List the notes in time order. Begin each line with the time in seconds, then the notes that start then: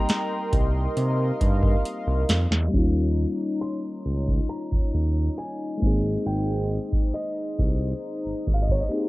Already playing: G3 A#3 C4 D#4 G4 A#4 D#5 G5 A#5 C6
0.09 snare, closed hi-hat
0.53 C2, kick, closed hi-hat
0.96 C3 F5, closed hi-hat
1.41 G2, kick, closed hi-hat
1.63 kick
1.85 closed hi-hat
2.07 C2
2.29 F2, snare, closed hi-hat
2.51 E2, snare
2.68 G3 A#3
2.73 D#2 C#4 D#4 C#5 D#5 A#5, kick
2.78 F4
3.17 closed hi-hat
3.61 C6, finger snap
4.06 C#2, closed hi-hat
4.28 kick
4.49 A#5, closed hi-hat
4.72 D#2, kick
4.94 D#2, closed hi-hat
5.38 G#5, finger snap, closed hi-hat
5.77 G#3 A#3
5.82 G#1 C4 D#4 G#4 C5, kick, closed hi-hat
5.87 G#4
6.26 G#1 G5, closed hi-hat
6.70 closed hi-hat
6.93 kick
7.14 D#5, finger snap, closed hi-hat
7.59 C2 A#5, kick, closed hi-hat
8.03 closed hi-hat
8.25 G#1
8.47 G#1, kick, closed hi-hat
8.54 F5
8.62 D#5
8.69 C#5, kick
8.81 D#5
8.89 A#3 C4 D#4 G4, finger snap, closed hi-hat
8.94 G#4